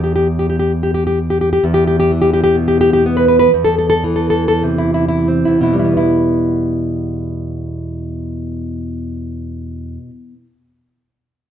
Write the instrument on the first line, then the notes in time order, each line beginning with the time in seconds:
nylon-string guitar
Already playing: E2
0.04 G4
0.16 G4
0.39 G4
0.50 G4
0.59 G4
0.83 G4
0.94 G4
1.07 G4
1.30 G4
1.41 G4
1.53 G4
1.64 E2
1.74 G4
1.87 G4
2.00 G4
2.11 E3
2.22 G4
2.34 G4
2.44 G4
2.55 B2
2.68 G4
2.81 G4
2.93 G4
3.06 B3
3.17 B4
3.28 B4
3.39 B4
3.54 E2
3.65 A4
3.78 A4
3.90 A4
4.04 E3
4.16 A4
4.30 A4
4.48 A4
4.63 C3
4.78 E4
4.94 E4
5.08 E4
5.28 C4
5.45 E2 E4
5.61 B2 E4
5.73 G3
5.79 E4
5.84 B3
5.97 E4